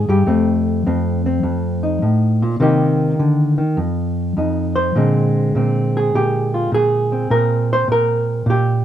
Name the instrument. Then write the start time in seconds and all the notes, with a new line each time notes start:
hollow-body jazz guitar
Already playing: D3 G#3 G#4
0.09 G2 G4
0.27 F2 A3 C4
0.86 F2 C4
1.26 C4
1.43 F2
1.83 D#4
2.02 A2
2.42 A#2
2.60 C3 D#3 A#3 D#4 G4
3.19 D3
3.58 D#3
3.77 F2
4.37 F2 D#4
4.76 C5
4.96 A#2 D3 G#3 C4
5.55 A#2 C4
5.97 G#4
6.15 A#2 G4
6.54 F4
6.72 A#2 G#4
7.12 C4
7.30 A#2 A#4
7.73 C5
7.88 A#2 A#4
8.46 A#2 G4